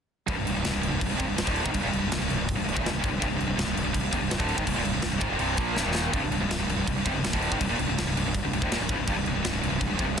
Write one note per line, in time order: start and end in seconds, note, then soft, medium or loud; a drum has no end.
0.28 0.36 C1 medium
0.28 0.36 C2 loud
0.28 0.37 G2 loud
0.28 kick loud
0.28 crash medium
0.38 0.46 C1 medium
0.38 0.46 C2 medium
0.38 0.46 G2 medium
0.47 0.56 C1 medium
0.47 0.55 C2 medium
0.47 0.55 G2 medium
0.47 crash medium
0.56 0.65 C1 medium
0.56 0.65 C2 medium
0.56 0.65 G2 medium
0.62 0.70 C2 medium
0.62 0.72 G2 medium
0.62 snare loud
0.62 crash medium
0.66 0.74 C1 medium
0.66 0.72 C2 medium
0.73 0.83 C1 medium
0.73 0.80 C2 medium
0.73 0.81 G2 medium
0.81 0.92 C1 medium
0.81 0.90 C2 medium
0.81 0.90 G2 medium
0.81 crash medium
0.91 1.01 C1 medium
0.91 1.00 C2 medium
0.91 1.00 G2 medium
1.01 1.10 C1 medium
1.01 1.09 C2 medium
1.01 1.08 G2 medium
1.01 kick medium
1.01 crash medium
1.10 1.19 C1 medium
1.10 1.18 C2 medium
1.10 1.18 G2 medium
1.18 1.28 F1 loud
1.18 1.27 F2 medium
1.18 1.26 C3 loud
1.18 kick loud
1.18 crash medium
1.26 1.38 C1 medium
1.26 1.35 C2 medium
1.26 1.35 G2 medium
1.36 1.47 C1 medium
1.36 1.43 C2 medium
1.36 1.43 G2 medium
1.36 snare loud
1.36 crash medium
1.44 1.64 D1 loud
1.44 1.62 D2 medium
1.44 1.63 A2 loud
1.44 1.64 D3 loud
1.44 kick loud
1.56 crash medium
1.63 1.74 G#1 loud
1.63 1.73 G#2 medium
1.63 1.73 D#3 loud
1.63 kick loud
1.74 1.83 C1 medium
1.74 1.83 C2 medium
1.74 1.82 G2 medium
1.74 kick loud
1.74 crash medium
1.83 1.93 D#1 loud
1.83 1.92 D#2 medium
1.83 1.92 A#2 medium
1.92 2.02 C1 medium
1.92 2.00 C2 medium
1.92 2.00 G2 medium
1.92 crash medium
2.01 2.12 C1 medium
2.01 2.11 C2 medium
2.01 2.11 G2 medium
2.08 2.17 C2 medium
2.08 2.17 G2 medium
2.08 crash medium
2.12 2.21 C1 medium
2.12 2.21 C2 medium
2.12 2.21 G2 medium
2.12 snare loud
2.22 2.30 C1 medium
2.22 2.29 C2 medium
2.22 2.30 G2 medium
2.30 2.39 C1 medium
2.30 2.37 C2 medium
2.30 2.37 G2 medium
2.30 crash medium
2.38 2.57 C1 medium
2.38 2.53 C2 medium
2.38 2.54 G2 medium
2.49 kick loud
2.49 crash medium
2.56 2.67 C1 medium
2.56 2.63 C2 medium
2.56 2.64 G2 medium
2.64 2.76 C1 medium
2.64 2.72 C2 medium
2.64 2.73 G2 medium
2.68 crash medium
2.73 2.85 D1 loud
2.73 2.80 D2 medium
2.73 2.81 A2 loud
2.73 kick loud
2.80 2.90 D#2 medium
2.80 2.90 A#2 loud
2.85 2.94 D#1 loud
2.85 snare loud
2.85 crash medium
2.90 2.99 C2 medium
2.90 3.00 G2 medium
2.94 3.03 C1 medium
3.00 3.12 C1 loud
3.00 3.09 C2 medium
3.00 3.11 G2 medium
3.00 kick loud
3.05 crash medium
3.10 3.21 C1 medium
3.10 3.19 C2 medium
3.10 3.19 G2 medium
3.20 3.30 C1 loud
3.20 3.28 C2 medium
3.20 3.28 G2 loud
3.20 kick loud
3.20 crash medium
3.29 3.39 C1 medium
3.29 3.37 C2 medium
3.29 3.38 G2 medium
3.39 3.48 C1 medium
3.39 3.46 C2 medium
3.39 3.45 G2 medium
3.39 crash medium
3.47 3.57 C1 medium
3.47 3.55 C2 medium
3.47 3.54 G2 medium
3.56 3.67 C1 medium
3.56 3.63 C2 medium
3.56 3.64 G2 medium
3.56 snare loud
3.56 crash medium
3.65 3.76 C1 medium
3.65 3.72 C2 medium
3.65 3.73 G2 medium
3.73 3.83 C2 medium
3.73 3.84 G2 medium
3.77 3.85 C1 medium
3.77 crash medium
3.84 3.94 C1 medium
3.84 3.92 C2 medium
3.84 3.92 G2 medium
3.93 4.03 C1 medium
3.93 4.00 C2 medium
3.93 4.00 G2 medium
3.93 kick medium
3.93 crash medium
4.01 4.12 C1 medium
4.01 4.11 C2 medium
4.01 4.12 G2 medium
4.11 4.21 F1 loud
4.11 4.21 F2 medium
4.11 4.21 C3 loud
4.11 kick loud
4.11 crash medium
4.22 4.30 C1 medium
4.22 4.29 C2 medium
4.22 4.29 G2 medium
4.30 4.39 C1 medium
4.30 4.38 C2 medium
4.30 4.39 G2 medium
4.30 snare loud
4.30 crash medium
4.38 4.57 D1 loud
4.38 4.56 D2 medium
4.38 4.56 A2 medium
4.38 4.58 D3 loud
4.38 kick loud
4.49 crash medium
4.56 4.67 G#1 medium
4.56 4.66 G#2 loud
4.56 4.66 D#3 loud
4.56 kick loud
4.66 4.77 C1 medium
4.66 4.75 C2 medium
4.66 4.77 G2 medium
4.66 kick loud
4.66 crash medium
4.76 4.85 D#1 medium
4.76 4.84 D#2 medium
4.76 4.85 A#2 medium
4.84 4.95 C1 medium
4.84 4.92 C2 medium
4.84 4.93 G2 medium
4.84 crash medium
4.93 5.03 C1 medium
4.93 5.01 C2 medium
4.93 5.02 G2 medium
5.02 5.12 C1 medium
5.02 5.09 C2 medium
5.02 5.11 G2 medium
5.02 snare loud
5.02 crash medium
5.10 5.21 C1 medium
5.10 5.19 C2 medium
5.10 5.19 G2 medium
5.19 5.31 G#1 loud
5.19 5.29 G#2 medium
5.19 5.30 D#3 loud
5.19 kick loud
5.19 crash medium
5.29 5.39 F1 loud
5.29 5.39 F2 medium
5.29 5.39 C3 loud
5.39 5.57 C1 medium
5.39 5.57 C2 medium
5.39 5.57 G2 medium
5.39 5.58 C3 loud
5.39 crash medium
5.57 5.75 A#1 loud
5.57 5.75 A#2 loud
5.57 5.76 F3 loud
5.57 5.77 A#3 loud
5.57 kick loud
5.57 crash medium
5.75 5.85 C1 loud
5.75 5.85 C2 medium
5.75 5.86 G2 loud
5.75 snare medium
5.85 6.12 D#1 loud
5.85 6.13 D#2 loud
5.85 6.13 A#2 loud
5.85 6.14 D#3 loud
5.95 snare medium
6.13 6.22 C1 medium
6.13 6.22 C2 medium
6.13 6.22 G2 loud
6.13 kick loud
6.13 crash medium
6.23 6.30 C1 medium
6.23 6.31 C2 medium
6.23 6.30 G2 medium
6.30 6.39 C1 medium
6.30 6.40 C2 medium
6.30 6.41 G2 medium
6.30 crash medium
6.40 6.49 C1 medium
6.40 6.49 C2 medium
6.40 6.50 G2 medium
6.50 6.58 C1 medium
6.50 6.59 C2 medium
6.50 6.59 G2 medium
6.50 snare loud
6.50 crash medium
6.59 6.68 C1 medium
6.59 6.69 C2 medium
6.59 6.69 G2 medium
6.68 6.76 C1 medium
6.68 6.78 C2 medium
6.68 6.78 G2 medium
6.68 crash medium
6.77 6.87 C1 medium
6.77 6.87 C2 medium
6.77 6.88 G2 medium
6.87 6.96 C1 medium
6.87 6.97 C2 medium
6.87 6.97 G2 medium
6.87 kick medium
6.87 crash medium
6.97 7.05 C1 medium
6.97 7.06 C2 medium
6.97 7.06 G2 medium
7.06 7.14 F1 loud
7.06 7.15 F2 loud
7.06 7.16 C3 loud
7.06 kick loud
7.06 crash medium
7.15 7.23 C1 loud
7.15 7.25 C2 medium
7.15 7.25 G2 medium
7.24 7.33 C1 medium
7.24 7.34 C2 medium
7.24 7.34 G2 medium
7.24 snare loud
7.24 crash medium
7.33 7.51 D1 loud
7.33 7.52 D2 loud
7.33 7.52 A2 medium
7.33 7.53 D3 loud
7.33 kick loud
7.42 crash medium
7.52 7.60 G#1 loud
7.52 7.61 G#2 medium
7.52 7.61 D#3 loud
7.52 kick loud
7.60 7.69 C1 medium
7.60 7.69 C2 medium
7.60 7.70 G2 medium
7.60 kick loud
7.60 crash medium
7.69 7.78 D#1 medium
7.69 7.78 D#2 medium
7.69 7.79 A#2 loud
7.79 7.88 C1 medium
7.79 7.88 C2 medium
7.79 7.89 G2 medium
7.79 crash medium
7.89 7.98 C1 medium
7.89 7.98 C2 medium
7.89 7.98 G2 medium
7.98 8.07 C1 medium
7.98 8.06 C2 medium
7.98 8.07 G2 medium
7.98 snare loud
7.98 crash medium
8.07 8.16 C1 medium
8.07 8.16 C2 medium
8.07 8.16 G2 medium
8.17 8.26 C1 medium
8.17 8.24 C2 medium
8.17 8.24 G2 medium
8.17 crash medium
8.25 8.43 C1 medium
8.25 8.40 C2 medium
8.25 8.41 G2 medium
8.35 kick medium
8.35 crash medium
8.43 8.52 C1 medium
8.43 8.52 C2 medium
8.43 8.52 G2 medium
8.53 8.61 C1 medium
8.53 8.62 C2 medium
8.53 8.63 G2 medium
8.53 crash medium
8.62 8.71 D1 loud
8.62 8.71 D2 medium
8.62 8.72 A2 loud
8.62 kick loud
8.71 8.80 D#1 loud
8.71 8.80 D#2 medium
8.71 8.81 A#2 loud
8.71 snare loud
8.71 crash medium
8.80 8.88 C1 medium
8.80 8.90 C2 medium
8.80 8.90 G2 medium
8.89 8.98 C1 loud
8.89 8.98 C2 medium
8.89 8.98 G2 loud
8.89 kick loud
8.89 crash medium
8.99 9.07 C1 medium
8.99 9.07 C2 medium
8.99 9.08 G2 medium
9.07 9.16 C1 medium
9.07 9.17 C2 loud
9.07 9.17 G2 loud
9.07 kick loud
9.07 crash medium
9.17 9.26 C1 medium
9.17 9.26 C2 medium
9.17 9.26 G2 medium
9.23 9.35 C1 medium
9.23 9.32 C2 medium
9.23 9.35 G2 medium
9.23 crash medium
9.27 9.34 C2 medium
9.35 9.44 C1 medium
9.35 9.43 C2 medium
9.35 9.44 G2 medium
9.44 9.53 C1 medium
9.44 9.52 C2 medium
9.44 9.52 G2 medium
9.44 snare loud
9.44 crash medium
9.53 9.63 C1 medium
9.53 9.62 C2 medium
9.53 9.62 G2 medium
9.63 9.71 C1 medium
9.63 9.69 C2 medium
9.63 9.69 G2 medium
9.63 crash medium
9.70 9.80 C1 medium
9.70 9.79 C2 medium
9.70 9.79 G2 medium
9.80 9.90 C1 medium
9.80 9.89 C2 medium
9.80 9.89 G2 medium
9.80 kick medium
9.80 crash medium
9.90 9.99 C1 medium
9.90 9.98 C2 medium
9.90 9.99 G2 medium
9.99 10.08 F1 medium
9.99 10.06 F2 loud
9.99 10.08 C3 loud
9.99 kick loud
9.99 crash medium
10.07 10.18 C1 medium
10.07 10.16 C2 medium
10.07 10.16 G2 medium
10.16 10.20 C2 medium
10.16 10.20 G2 medium